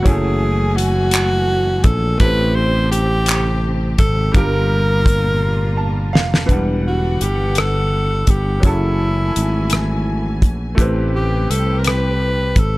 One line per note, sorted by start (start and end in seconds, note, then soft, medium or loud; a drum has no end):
0.03 1.81 F#1 loud
0.03 2.18 E3 medium
0.03 2.15 F#3 medium
0.03 2.18 A3 medium
0.03 2.16 C#4 medium
0.03 2.16 E4 medium
0.03 2.19 G#5 medium
0.03 kick loud
0.03 closed hi-hat medium
0.07 2.16 A3 medium
0.07 0.78 G#4 medium
0.07 2.17 G#5 medium
0.77 1.86 F#4 loud
0.77 closed hi-hat medium
1.11 clap loud
1.11 closed hi-hat medium
1.84 2.17 A#1 loud
1.84 2.20 A4 medium
1.84 kick medium
1.84 closed hi-hat medium
2.18 3.95 A1 loud
2.18 4.33 C3 medium
2.18 4.29 A3 medium
2.18 4.33 C4 medium
2.18 4.30 E4 medium
2.18 4.33 G4 medium
2.18 4.31 G4 medium
2.18 2.57 B4 loud
2.18 kick loud
2.18 closed hi-hat medium
2.23 4.33 C4 medium
2.23 4.32 A4 medium
2.55 2.91 C5 loud
2.91 3.68 G4 loud
2.91 closed hi-hat medium
3.26 clap loud
3.26 closed hi-hat medium
3.98 4.32 G#1 loud
3.98 4.35 A4 loud
3.98 kick medium
3.98 closed hi-hat medium
4.32 6.14 G1 loud
4.32 6.47 A#2 medium
4.32 6.44 G3 medium
4.32 6.47 A#3 medium
4.32 6.45 D4 medium
4.32 6.47 F4 medium
4.32 6.45 F4 medium
4.32 6.13 A#4 loud
4.32 kick medium
4.32 closed hi-hat medium
4.37 6.46 G4 medium
4.37 6.47 A#4 medium
5.06 kick loud
5.06 closed hi-hat medium
5.77 6.11 A5 medium
6.13 6.46 F1 loud
6.13 6.46 F5 medium
6.13 snare loud
6.34 snare medium
6.46 7.17 E1 medium
6.46 8.61 D3 medium
6.46 8.58 E3 medium
6.46 8.61 G3 medium
6.46 8.59 B3 medium
6.46 8.59 D4 medium
6.46 8.61 F#5 medium
6.46 kick medium
6.46 closed hi-hat medium
6.51 8.61 G3 medium
6.51 8.60 F#5 medium
6.88 7.24 F#4 medium
7.21 8.24 G1 medium
7.21 7.60 G4 medium
7.21 closed hi-hat medium
7.55 8.32 A4 medium
7.55 cross-stick loud
7.55 closed hi-hat medium
8.27 8.60 G1 medium
8.27 8.66 G4 medium
8.27 kick medium
8.27 closed hi-hat medium
8.60 10.75 E3 medium
8.60 10.72 F#3 medium
8.60 10.75 A3 medium
8.60 10.73 C#4 medium
8.60 10.74 E4 medium
8.60 10.75 G#5 medium
8.60 kick medium
8.60 closed hi-hat medium
8.64 9.31 F#1 medium
8.64 10.43 E4 medium
8.64 10.74 G#4 soft
8.64 10.75 A4 medium
9.36 10.43 G#1 medium
9.36 closed hi-hat medium
9.70 cross-stick loud
9.70 closed hi-hat medium
10.42 10.75 A#1 medium
10.42 kick medium
10.42 closed hi-hat medium
10.75 11.46 A1 medium
10.75 12.78 C3 medium
10.75 12.78 A3 medium
10.75 12.78 E4 medium
10.75 12.78 G4 medium
10.75 kick loud
10.75 closed hi-hat medium
10.79 12.78 C4 medium
10.79 12.78 B4 medium
11.16 11.52 G4 medium
11.50 12.53 C2 medium
11.50 11.80 A4 medium
11.50 closed hi-hat medium
11.79 11.88 A#4 medium
11.84 12.61 B4 medium
11.84 cross-stick loud
11.84 closed hi-hat medium
12.56 12.78 G#1 medium
12.56 12.78 A4 medium
12.56 kick medium
12.56 closed hi-hat medium